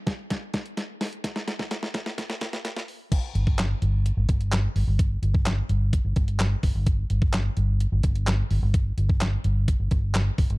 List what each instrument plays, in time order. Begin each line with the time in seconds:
0.07 kick, snare, closed hi-hat
0.30 kick, snare, closed hi-hat
0.54 kick, snare, closed hi-hat
0.66 closed hi-hat
0.77 snare, closed hi-hat
1.01 snare, open hi-hat
1.13 closed hi-hat
1.24 kick, snare, closed hi-hat
1.36 snare
1.48 snare, closed hi-hat
1.59 kick, snare
1.71 snare, closed hi-hat
1.83 snare
1.94 kick, snare, closed hi-hat
2.06 snare
2.18 kick, snare, closed hi-hat
2.30 snare
2.41 kick, snare, closed hi-hat
2.53 snare, closed hi-hat
2.65 snare, closed hi-hat
2.76 snare
2.88 open hi-hat
3.12 kick, closed hi-hat, crash
3.35 fingered electric bass G1, closed hi-hat
3.47 kick
3.58 snare, clap, closed hi-hat
3.82 fingered electric bass G1, closed hi-hat
4.06 closed hi-hat
4.17 fingered electric bass G1
4.29 kick, closed hi-hat
4.41 closed hi-hat
4.52 snare, clap, closed hi-hat
4.76 fingered electric bass G1, open hi-hat
4.87 fingered electric bass G1
4.99 kick, closed hi-hat
5.22 fingered electric bass G1, closed hi-hat
5.34 kick
5.46 snare, clap, closed hi-hat
5.69 fingered electric bass G1, closed hi-hat
5.93 kick, closed hi-hat
6.05 fingered electric bass G1
6.16 fingered electric bass G1, kick, closed hi-hat
6.28 closed hi-hat
6.40 snare, clap, closed hi-hat
6.63 fingered electric bass G1, kick, open hi-hat
6.75 fingered electric bass G1
6.86 kick, closed hi-hat
7.10 fingered electric bass G1, closed hi-hat
7.22 kick
7.33 snare, clap, closed hi-hat
7.57 fingered electric bass G1, closed hi-hat
7.80 closed hi-hat
7.92 fingered electric bass G1
8.03 fingered electric bass G1, kick, closed hi-hat
8.16 closed hi-hat
8.27 snare, clap, closed hi-hat
8.51 fingered electric bass G1, open hi-hat
8.62 fingered electric bass G1
8.74 kick, closed hi-hat
8.98 fingered electric bass G1, closed hi-hat
9.09 kick
9.21 snare, clap, closed hi-hat
9.44 fingered electric bass G1, closed hi-hat
9.68 kick, closed hi-hat
9.80 fingered electric bass G1
9.91 fingered electric bass G1, kick, closed hi-hat
10.14 snare, clap, closed hi-hat
10.38 fingered electric bass G1, kick, open hi-hat
10.50 fingered electric bass G1, closed hi-hat